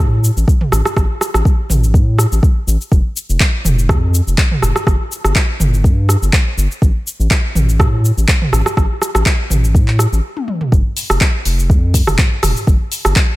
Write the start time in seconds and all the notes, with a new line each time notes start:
0.00 A2
0.24 shaker
0.37 A1, shaker
0.48 kick, shaker
0.61 mid tom
0.72 A1, cross-stick, shaker
0.85 cross-stick, shaker
0.96 A1, kick, cross-stick, shaker
1.21 cross-stick, shaker
1.34 A1, cross-stick, shaker
1.45 kick, shaker
1.70 A1, mid tom, shaker
1.84 shaker
1.94 A2, kick, shaker
2.19 cross-stick, shaker
2.32 A1, shaker
2.43 kick, shaker
2.67 A1, shaker
2.81 shaker
2.92 F1, kick, shaker
3.17 shaker
3.29 F1, shaker
3.40 kick, clap, shaker
3.65 F1, mid tom, shaker
3.79 shaker
3.89 F2, kick, cross-stick, mid tom, shaker
4.14 shaker
4.27 F1, shaker
4.38 kick, clap, shaker
4.51 mid tom
4.62 F1, cross-stick, shaker
4.76 cross-stick, shaker
4.87 G1, kick, cross-stick, shaker
5.12 shaker
5.24 G1, cross-stick, shaker
5.35 kick, clap, shaker
5.60 G1, mid tom, shaker
5.74 shaker
5.84 G2, kick, shaker
6.09 cross-stick, shaker
6.22 G1, shaker
6.33 kick, clap, shaker
6.57 G1, shaker
6.72 shaker
6.82 A1, kick, shaker
7.07 shaker
7.20 A1, shaker
7.31 kick, clap, shaker
7.55 A1, mid tom, shaker
7.69 shaker
7.79 A2, kick, cross-stick, mid tom, shaker
8.05 shaker
8.17 A1, shaker
8.28 kick, clap, shaker
8.42 mid tom
8.53 A1, cross-stick, shaker
8.66 cross-stick, shaker
8.77 A1, kick, cross-stick, shaker
9.02 cross-stick, shaker
9.15 A1, cross-stick, shaker
9.26 kick, clap, shaker
9.50 A1, mid tom, shaker
9.64 shaker
9.75 A2, kick, shaker
9.88 clap
9.99 cross-stick, shaker
10.12 A1, shaker
10.37 high tom
10.48 mid tom
10.61 mid tom
10.72 F1, kick, shaker
10.97 open hi-hat, shaker
11.10 F1, cross-stick, shaker
11.21 kick, clap, shaker
11.45 F1, open hi-hat, shaker
11.59 shaker
11.70 F2, kick, shaker
11.94 kick, open hi-hat, shaker
12.07 F1, cross-stick, mid tom, shaker
12.18 kick, clap, shaker
12.43 F1, cross-stick, mid tom, open hi-hat, shaker
12.57 shaker
12.67 G1, kick, shaker
12.92 open hi-hat, shaker
13.05 G1, cross-stick, shaker
13.16 kick, clap, shaker